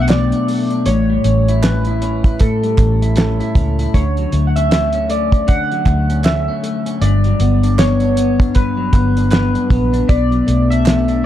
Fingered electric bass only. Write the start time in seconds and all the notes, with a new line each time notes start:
Already playing: B1
0.86 A1
1.25 A1
2.78 A1
3.56 C#2
3.94 D2
4.33 D2
5.86 D2
7.01 G1
7.40 G1
8.93 G1
9.70 A#1
10.09 B1
10.48 B1